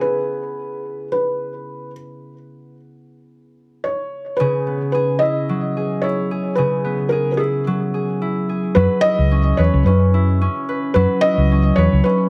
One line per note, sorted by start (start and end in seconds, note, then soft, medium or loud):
0.00 4.66 B3 medium
0.00 3.67 E4 medium
0.00 2.05 G#4 medium
0.00 1.08 B4 medium
1.12 1.90 B4 medium
3.84 4.35 C#5 medium
4.37 6.56 C#3 medium
4.37 4.91 B4 medium
4.41 4.94 G#4 medium
4.67 6.84 B3 soft
4.92 5.76 G#4 medium
4.92 5.22 B4 medium
5.19 6.03 E4 medium
5.19 6.05 D#5 loud
5.49 7.67 F#3 medium
5.77 6.31 G#4 medium
6.02 7.39 E4 medium
6.02 6.53 C#5 medium
6.31 6.58 G#4 medium
6.55 8.82 C#3 medium
6.55 7.12 G#4 medium
6.55 7.08 B4 medium
6.84 12.12 B3 medium
7.09 7.94 G#4 medium
7.09 7.30 A#4 medium
7.32 7.39 A#4 medium
7.37 8.21 E4 medium
7.37 7.64 G#4 medium
7.67 8.75 F#3 medium
7.94 8.49 G#4 medium
8.22 9.03 E4 medium
8.49 10.77 G#4 medium
8.75 8.86 F#2 loud
8.75 10.95 F#3 medium
8.75 9.01 B4 loud
8.75 9.58 B4 medium
9.01 10.14 E4 medium
9.01 9.59 D#5 loud
9.19 9.52 C#2 medium
9.31 9.86 C#4 medium
9.57 9.68 E2 medium
9.57 10.68 B4 medium
9.57 9.83 C#5 medium
9.74 9.82 C#2 medium
9.85 10.47 F#2 medium
9.85 10.41 C#4 medium
9.85 10.64 B4 medium
10.14 11.23 E4 medium
10.41 11.51 C#4 medium
10.69 10.96 B4 medium
10.94 11.05 F#2 medium
10.94 12.29 F#3 medium
10.94 11.22 B4 loud
10.94 11.78 B4 medium
11.21 12.29 E4 medium
11.21 11.78 D#5 loud
11.38 11.70 C#2 medium
11.52 12.05 C#4 medium
11.76 11.87 E2 medium
11.76 12.29 B4 medium
11.76 12.04 C#5 loud
11.93 12.00 C#2 medium
12.04 12.29 C#4 medium
12.04 12.29 B4 medium